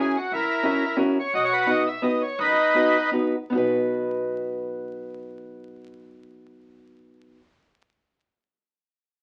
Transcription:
0.00 0.15 C#4 medium
0.00 0.16 E4 medium
0.00 0.16 F#4 medium
0.00 0.17 G#4 medium
0.00 0.16 A#4 medium
0.16 0.33 F#4 medium
0.31 0.44 C#2 loud
0.31 0.97 E4 medium
0.31 0.97 A#4 medium
0.63 0.83 C#4 medium
0.63 0.84 E4 medium
0.63 0.84 F#4 medium
0.63 0.84 A#4 medium
0.97 1.17 C#4 medium
0.97 1.17 E4 medium
0.97 1.17 F#4 medium
0.97 1.18 A#4 medium
1.19 1.34 C#5 medium
1.34 1.78 B1 loud
1.34 1.83 F#4 medium
1.34 1.44 D#5 loud
1.43 1.53 C#5 medium
1.53 1.69 B4 loud
1.66 1.86 B3 medium
1.66 1.86 D#4 medium
1.66 1.86 F#4 medium
1.66 1.86 B4 medium
1.66 1.88 D#5 loud
1.87 2.04 E5 medium
2.02 2.21 B3 medium
2.02 2.22 D#4 medium
2.02 2.22 F#4 medium
2.02 2.23 B4 medium
2.02 2.22 D#5 medium
2.22 2.39 C#5 medium
2.39 2.51 F#2 loud
2.39 3.10 D#4 medium
2.39 3.10 B4 loud
2.74 2.95 B3 medium
2.74 2.96 D#4 medium
2.74 2.96 F#4 medium
2.74 2.96 B4 medium
3.11 3.34 B3 medium
3.11 3.34 D#4 medium
3.11 3.34 F#4 medium
3.11 3.35 B4 medium
3.50 7.40 B1 loud
3.50 7.38 B3 medium
3.50 7.39 D#4 medium
3.55 7.41 F#4 medium
3.55 7.42 B4 medium

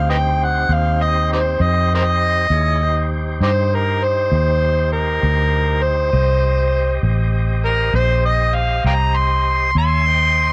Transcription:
0.00 0.67 D2 medium
0.00 2.47 C4 medium
0.00 2.47 D#4 medium
0.00 2.47 G4 medium
0.00 2.47 C5 medium
0.10 0.17 B4 medium
0.10 0.16 D#5 medium
0.10 0.45 G5 medium
0.43 0.75 F#5 medium
0.69 1.57 D#2 medium
0.73 1.04 F5 medium
1.02 1.31 D#5 medium
1.33 1.40 D#4 medium
1.33 1.39 G4 medium
1.33 1.64 C5 medium
1.60 2.48 F2 medium
1.60 1.91 D#5 medium
1.95 2.03 A#4 medium
1.95 2.03 C5 medium
1.95 3.10 D#5 loud
2.50 3.38 D#2 medium
2.50 2.81 E4 medium
2.50 2.82 G#4 medium
2.50 2.82 C#5 medium
2.83 6.11 D#4 medium
2.83 6.10 G4 medium
2.83 6.11 C5 medium
3.41 4.29 G2 medium
3.41 3.51 D#4 medium
3.41 3.50 G4 medium
3.41 3.76 C5 medium
3.75 4.05 A#4 loud
4.03 4.90 C5 medium
4.32 5.20 D#2 medium
4.92 5.84 A#4 medium
5.23 6.11 D2 medium
5.82 6.99 C5 loud
6.12 7.01 C2 medium
6.12 9.71 G4 medium
6.12 9.71 C5 medium
6.12 9.71 D#5 medium
7.03 7.91 A1 medium
7.65 7.94 A#4 loud
7.94 8.82 A#1 medium
7.94 8.24 C5 loud
8.25 8.56 D#5 medium
8.55 8.84 F5 medium
8.84 9.72 C2 medium
8.84 8.93 F5 medium
8.84 8.93 G5 medium
8.84 9.18 A#5 medium
9.16 9.74 C6 loud
9.75 10.53 D#2 medium
9.75 10.06 C#5 medium
9.75 10.06 E5 medium
9.75 10.06 G#5 medium
9.75 10.53 C6 loud
10.06 10.53 C5 medium
10.06 10.53 D#5 medium
10.06 10.53 G5 medium

